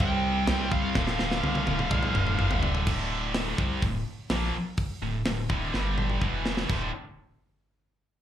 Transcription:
Already playing: C3 G3 C4
0.00 C2 C3 G3 C4 G5, kick, china
0.47 C2 C3 G3 C4, snare, china
0.72 C2 F5, kick
0.95 D1 D2 A2 D3, kick, snare
1.07 snare
1.19 D1, snare
1.31 snare
1.43 C2, high tom
1.55 high tom
1.66 D1 D2 A2 D3, high tom
1.79 mid tom
1.91 C2 D2 A2 D3, kick, mid tom
2.03 mid tom
2.15 D1, mid tom
2.27 mid tom
2.38 G1 D2 A2 D3, mid tom
2.51 floor tom
2.62 D1, floor tom
2.75 floor tom
2.87 D1 D2 A2 D3, kick, crash
3.34 snare, open hi-hat
3.58 C2 C3 G3 C4, kick
3.82 D1 D2 A2, kick, open hi-hat
4.30 A#1 A#2 F3 A#3, snare, open hi-hat
4.77 kick, open hi-hat
5.02 D1 D2 A2
5.26 D1 D2 A2, snare, open hi-hat
5.49 D1 D2 A2 D3, kick
5.74 G1 G2 D3 G3, snare
5.98 mid tom
6.10 mid tom
6.22 E1 E2 B2 E3, kick
6.46 snare
6.57 snare
6.69 D1 D2 A2 D3, kick, crash

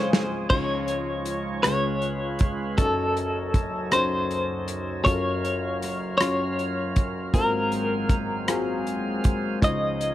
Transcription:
Already playing: C#2 C#3 F3 G#3 C4 C#4 F4 G#4 C5 C#5
0.13 snare
0.49 C#2 C#3 F3 C#4 D#4 F4 C#5 C6, kick, crash
0.88 closed hi-hat
1.25 closed hi-hat
1.63 C#2 C#3 G#3 C#4 F4 G#4 B4 C#5, cross-stick, closed hi-hat
2.02 closed hi-hat
2.39 kick, closed hi-hat
2.77 F#1 F#2 F#3 C#4 D#4 F#4 A4, kick, closed hi-hat
3.17 closed hi-hat
3.54 kick, cross-stick, closed hi-hat
3.91 C#4 D#4 F#4 C5, cross-stick, closed hi-hat
4.31 closed hi-hat
4.68 closed hi-hat
5.05 F#1 F#2 C#4 F4 F#4 A4 A#4 C#5 F5, kick, closed hi-hat
5.13 A#4
5.45 closed hi-hat
5.82 cross-stick, closed hi-hat
6.18 C#4 F4 F#4 C#5 C6, cross-stick, closed hi-hat
6.59 closed hi-hat
6.96 kick, closed hi-hat
7.34 G#1 G#2 A#3 C4 F4 F#4 G#4 A#4, kick, closed hi-hat
7.72 closed hi-hat
8.09 kick, cross-stick, closed hi-hat
8.48 C4 F4 F#4 G#4, cross-stick, closed hi-hat
8.87 closed hi-hat
9.24 kick, closed hi-hat
9.61 C#2 C#3 F3 C#4 D#4 F4 C5 D#5, kick, closed hi-hat
10.01 closed hi-hat

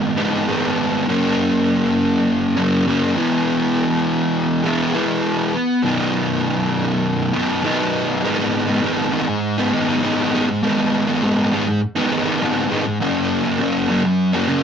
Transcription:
Already playing: G#2 D#3 G#3 B3 D#4
0.18 G#2 D#3 G#3 B3 D#4
0.48 G#2 D#3 G#3 B3 D#4
1.07 F#2 C#3 F#3 A#3 C#4
2.56 F#2 C#3 F#3 A#3 C#4
2.87 F#2 C#3 F#3 A#3 C#4
3.15 E3 G#3 B3 E4
4.64 E3 G#3 B3 E4
4.94 E3 G#3 B3 E4
5.83 B2 D#3 F#3 B3 D#4
7.33 B2 D#3 F#3 B3 D#4
7.63 B2 D#3 F#3 B3 D#4
8.23 G#2 D#3 G#3 B3 D#4
8.68 G#3 B3 D#4
8.82 G#2 D#3 G#3 B3 D#4
9.11 D#3 G#3 B3 D#4
9.27 muted distorted electric guitar stroke
9.58 G#3 B3 D#4
9.72 D#3 G#3 B3 D#4
9.88 G#3 B3 D#4
10.02 G#2 D#3 G#3 B3 D#4
10.33 D#3 G#3 B3 D#4
10.48 muted distorted electric guitar stroke
10.63 G#2 D#3 G#3 B3 D#4
11.07 G#3 B3 D#4
11.22 G#2 D#3 G#3 B3 D#4
11.53 D#3 G#3 B3 D#4
11.69 muted distorted electric guitar stroke
11.96 G#3 B3 D#4
12.10 D#3 G#3 B3 D#4
12.26 G#3 B3 D#4
12.41 G#2 D#3 G#3 B3 D#4
12.71 D#3 G#3 B3 D#4
12.86 muted distorted electric guitar stroke
13.01 F#2 C#3 F#3 A#3 C#4
13.43 F#3 A#3 C#4
13.59 F#2 C#3 F#3 A#3 C#4
13.88 C#3 F#3 A#3 C#4
14.05 muted distorted electric guitar stroke
14.33 F#3 A#3 C#4
14.48 C#3 F#3 A#3 C#4

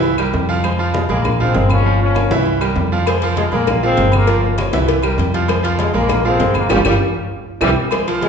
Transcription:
Already playing: C2 E3 E4 E5
0.03 high conga, low agogo
0.18 G3 G4 A#4, high conga, low agogo, claves
0.33 F2, high conga, low timbale
0.49 F3 F4 F5, high conga
0.64 G#3 G#4 C5, high conga, low agogo, claves
0.79 F3 F4 F5, high conga
0.94 G#3, high conga, low timbale, low agogo
1.09 A#1 C#3 F3 G#3 A#3 G#4 A#4, high conga, low agogo
1.24 high conga, low conga, low agogo, claves
1.40 F3 G#3 C4 F4 F5, high conga, low conga
1.54 G1 G#3 G#4 A#4, high conga, low timbale, low agogo
1.70 F3 A#3 C#4, high conga, low agogo, claves
1.85 F3 F4 F5, high conga
2.01 F3 A#3 C#4, high conga
2.15 A#3 A#4 C#5, high conga, low timbale, low agogo, claves
2.30 C2 E3 E4 E5, high conga
2.45 high conga, low agogo
2.61 G3 G4 A#4, high conga, low agogo, claves
2.76 F2, high conga, low timbale
2.92 F3 F4 F5, high conga
3.06 G#3 G#4 C5, cowbell, low agogo, claves
3.22 F3 F4 F5, cowbell, high conga
3.36 G#3, cowbell, high conga, low timbale, low agogo
3.52 A#1 C#3 F3 G#3 A#3 G#4 A#4, high conga, low agogo
3.67 cowbell, high conga, low conga, low agogo, claves
3.83 F3 G#3 C4 F4 F5, high conga
3.97 G1 G#3 G#4 A#4, cowbell, high conga, low timbale, low agogo
4.12 C#3 F3 A#3, high conga, low agogo, claves
4.27 F3 F4 F5, cowbell, high conga
4.44 A#2 C#3 F3, high conga
4.58 A#3 A#4 C#5, cowbell, high conga, low timbale, low agogo, claves
4.73 C2 E3 E4 E5, cowbell, high conga
4.88 cowbell, high conga, low agogo
5.02 G3 G4 A#4, high conga, low agogo, claves
5.18 F2, cowbell, high conga, low timbale
5.34 F3 F4 F5, cowbell, high conga
5.48 G#3 G#4 C5, cowbell, high conga, low agogo, claves
5.63 F3 F4 F5, cowbell, high conga
5.79 G#3, cowbell, high conga, low timbale, low agogo
5.94 A#1 C#3 F3 G#3 A#3 G#4 A#4, high conga, low agogo
6.09 cowbell, high conga, low conga, low agogo, claves
6.24 F3 G#3 C4 F4 F5, high conga
6.40 G1 G#3 G#4 A#4, cowbell, high conga, low timbale, low agogo
6.54 C#3 F3 A#3, high conga, low agogo, claves
6.69 G1 C#3 F3 G3 C#4 F4 G4, cowbell, low conga, high timbale, claves
6.85 G1 C#3 F3 G3 C#4 F4 G4, cowbell, low conga, high timbale, claves
7.61 C2 C3 E3 G3 C4 E4 G4, cowbell, low conga, high timbale, claves
7.91 G#3 G#4 C5, cowbell, high conga, low agogo, claves
8.08 F3 F4 F5, cowbell, high conga
8.21 G#3, cowbell, high conga, low timbale, low agogo

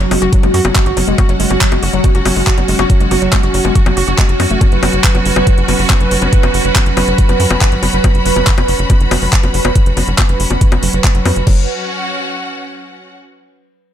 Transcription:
Already playing: F#3 C#4 F#4 F#5
0.00 F#1 F#3, closed hi-hat
0.11 F#1 G#3, open hi-hat, high bongo
0.22 F#1 F#4, closed hi-hat
0.33 F#3, kick, closed hi-hat
0.43 F#1 G#3, closed hi-hat, high bongo
0.54 F#2 F#4, open hi-hat
0.65 F#1 F#3, closed hi-hat, high bongo
0.75 G#3, kick, clap, closed hi-hat
0.86 G#1 F#4, closed hi-hat
0.97 F#1 F#3, open hi-hat, high bongo
1.08 F#1 G#3, closed hi-hat
1.18 F#4, kick, closed hi-hat, high bongo
1.29 F#1 F#3, closed hi-hat
1.40 F#1 G#3, open hi-hat
1.50 F#1 F#4, closed hi-hat, high bongo
1.61 F#3, kick, clap, closed hi-hat
1.72 F#1 G#3, closed hi-hat, high bongo
1.83 F#1 F#4, open hi-hat
1.93 F#1 F#3, closed hi-hat
2.04 G#3, kick, closed hi-hat, high bongo
2.15 F#1 F#4, closed hi-hat
2.25 F#1 F#3, open hi-hat, high bongo
2.36 F#1 G#3, open hi-hat
2.47 F#4, kick, clap, closed hi-hat
2.58 F#1 F#3, closed hi-hat, high bongo
2.68 F#1 G#3, open hi-hat
2.79 F#1 F#4, high bongo
2.90 F#3, kick, closed hi-hat
3.00 F#1 G#3, closed hi-hat
3.11 F#1 F#4, open hi-hat, high bongo
3.22 F#1 F#3, closed hi-hat
3.33 G#3, kick, clap, closed hi-hat, high bongo
3.43 F#1 F#4, closed hi-hat
3.54 F#1 F#3, open hi-hat
3.65 F#1 G#3, high bongo
3.75 F#4, kick, closed hi-hat
3.86 F#1 F#3, closed hi-hat, high bongo
3.97 F#1 F#4, open hi-hat
4.08 F#1 F#4, closed hi-hat
4.18 G#3, kick, clap, closed hi-hat, high bongo
4.29 F#1, closed hi-hat
4.40 F#2 F#4, open hi-hat, high bongo
4.50 F#1 A3, closed hi-hat
4.61 B4, kick, closed hi-hat, high bongo
4.72 F#1, closed hi-hat
4.83 F#1, open hi-hat, high bongo
4.93 F#1, closed hi-hat
5.04 B5, kick, clap, closed hi-hat
5.15 F#1, closed hi-hat, high bongo
5.25 F#1, open hi-hat
5.36 F#1, closed hi-hat, high bongo
5.47 kick, closed hi-hat
5.58 F#1, closed hi-hat
5.68 F#1, open hi-hat, high bongo
5.79 F#1, open hi-hat
5.90 kick, clap, closed hi-hat, high bongo
6.01 F#1, closed hi-hat
6.11 F#1, open hi-hat
6.22 F#1, closed hi-hat, high bongo
6.33 kick, closed hi-hat
6.43 F#1, closed hi-hat, high bongo
6.54 F#1, open hi-hat
6.65 F#1, closed hi-hat
6.76 kick, clap, closed hi-hat, high bongo
6.86 F#1, closed hi-hat
6.97 F#1, open hi-hat, high bongo
7.08 F#1, closed hi-hat
7.18 kick, closed hi-hat
7.29 F#1, closed hi-hat, high bongo
7.40 F#2, open hi-hat
7.50 F#1, high bongo
7.61 kick, clap, closed hi-hat
7.72 G#1, closed hi-hat
7.83 F#1, open hi-hat, high bongo
7.93 F#1, closed hi-hat
8.04 kick, closed hi-hat, high bongo
8.15 F#1, closed hi-hat
8.26 F#1, open hi-hat
8.36 F#1, closed hi-hat, high bongo
8.47 kick, clap, closed hi-hat
8.58 F#1, closed hi-hat, high bongo
8.68 F#1, open hi-hat
8.79 F#1, closed hi-hat
8.90 kick, closed hi-hat, high bongo
9.01 F#1, closed hi-hat
9.11 F#1, open hi-hat, high bongo
9.22 F#1, open hi-hat
9.33 kick, clap, closed hi-hat
9.43 F#1, closed hi-hat, high bongo
9.54 F#1, open hi-hat
9.65 F#1, closed hi-hat, high bongo
9.76 kick, closed hi-hat
9.86 F#1, closed hi-hat
9.97 F#1, open hi-hat, high bongo
10.08 F#1, closed hi-hat
10.18 kick, clap, closed hi-hat, high bongo
10.29 F#1, closed hi-hat
10.40 F#1, open hi-hat
10.51 F#1, closed hi-hat, high bongo
10.61 kick, closed hi-hat
10.72 F#1, closed hi-hat, high bongo
10.83 F#1, open hi-hat
10.93 F#1, closed hi-hat
11.04 kick, clap, closed hi-hat, high bongo
11.15 F#1, closed hi-hat
11.26 F#2, open hi-hat, high bongo
11.36 F#1, closed hi-hat
11.47 F#1 F#3 C#4, kick, crash
11.53 F#4
11.60 F#5

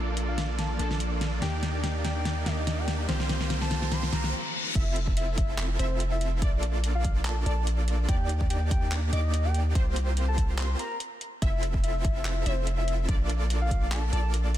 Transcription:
Already playing: A#1 F3 A#3 D4 F4 A4 D5, riser
0.17 closed hi-hat
0.28 F5
0.38 snare, closed hi-hat
0.59 A5, snare, closed hi-hat
0.77 A#1 F3 A#3 D4 F4 A4 D5 A5, closed hi-hat
0.81 A4
0.91 snare
1.00 closed hi-hat
1.21 snare, closed hi-hat
1.40 D#2 D#3 A#3 D4 D#4 G4 D5 G5, snare, closed hi-hat
1.63 snare, closed hi-hat
1.84 G5, snare, closed hi-hat
2.04 G5, snare, closed hi-hat
2.25 snare, closed hi-hat
2.44 D#2 D#3 A#3 D4 D#4 G4 A#4 D5 D#5, snare, closed hi-hat
2.67 snare, closed hi-hat
2.78 G5
2.88 snare, closed hi-hat
3.07 C2 F3 A#3 C4 F4 G4 C5, snare, closed hi-hat
3.20 snare
3.29 snare, closed hi-hat
3.41 snare
3.50 snare, closed hi-hat
3.61 A5, snare
3.71 snare, closed hi-hat
3.82 snare
3.92 C6, snare, closed hi-hat, reverse cymbal
4.03 snare
4.13 C2 A#3 C4 F4 G4 C5 A#5, snare, closed hi-hat
4.24 snare
4.75 F1 C4 E4 F4 A4 E5, kick, closed hi-hat, crash
4.96 closed hi-hat
5.07 kick
5.17 E5, closed hi-hat
5.38 E5, kick, closed hi-hat
5.59 clap, closed hi-hat
5.79 F1 C4 E4 F4 A4 C5 E5, closed hi-hat
6.00 closed hi-hat
6.12 E5
6.21 closed hi-hat
6.42 A#1 A#3 D4 F4 A4 D5, kick, closed hi-hat
6.63 closed hi-hat
6.84 closed hi-hat
6.95 F5
7.04 kick, closed hi-hat
7.25 A5, clap, closed hi-hat
7.46 A#1 A#3 D4 F4 A4 D5 A5, closed hi-hat
7.67 closed hi-hat
7.88 closed hi-hat
8.09 D#2 A#3 D4 D#4 G4 D5 G5, kick, closed hi-hat
8.29 closed hi-hat
8.41 kick
8.50 G5, closed hi-hat
8.71 G5, kick, closed hi-hat
8.92 clap, closed hi-hat
9.13 D#2 A#3 D4 D#4 G4 D5 D#5 D6, closed hi-hat
9.34 closed hi-hat
9.45 G5
9.54 closed hi-hat
9.75 C2 A#3 C4 F4 G4 C5, kick, closed hi-hat
9.96 closed hi-hat
10.17 closed hi-hat
10.28 A5
10.38 kick, closed hi-hat
10.59 C6, clap, closed hi-hat
10.79 A#5, closed hi-hat
11.00 closed hi-hat
11.21 closed hi-hat
11.42 F1 C4 E4 F4 A4 E5, kick, closed hi-hat
11.63 closed hi-hat
11.74 kick
11.83 E5, closed hi-hat
12.05 E5, kick, closed hi-hat
12.25 clap, closed hi-hat
12.46 F1 C4 E4 F4 A4 C5 E5, closed hi-hat
12.67 closed hi-hat
12.78 E5
12.88 closed hi-hat
13.09 A#1 A#3 D4 F4 A4 D5, kick, closed hi-hat
13.30 closed hi-hat
13.50 closed hi-hat
13.62 F5
13.71 kick, closed hi-hat
13.92 A5, clap, closed hi-hat
14.13 A#1 A#3 D4 F4 A4 D5 A5, closed hi-hat
14.34 closed hi-hat
14.55 closed hi-hat

